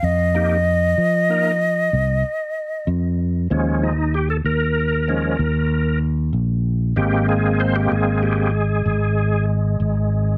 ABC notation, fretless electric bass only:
X:1
M:11/8
L:1/8
Q:1/4=95
K:Ebmix
V:1 name="Fretless electric bass" clef=bass
F,,3 F,3 C,, z2 F,,2 | E,,3 E,,3 E,,3 B,,,2 | A,,,3 A,,,3 A,,,3 A,,,2 |]